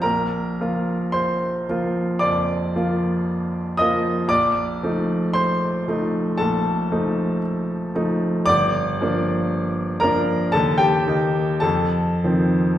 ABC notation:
X:1
M:4/4
L:1/16
Q:1/4=57
K:Bb
V:1 name="Grand piano"
[Bb]4 [cc']4 [dd']6 [ee']2 | [dd']4 [cc']4 [Aa]4 z4 | [dd']6 [Bb]2 [Aa] [Gg]3 [Aa]4 |]
V:2 name="Grand piano"
B,,,2 [F,B,F]4 [F,B,F]2 F,,2 [F,B,F]4 [F,B,F]2 | B,,,2 [F,A,E]4 [F,A,E]2 B,,,2 [F,A,E]4 [F,A,E]2 | G,,,2 [F,B,D]4 [F,B,D]2 E,,2 [E,B,E]2 F,,2 [E,F,C]2 |]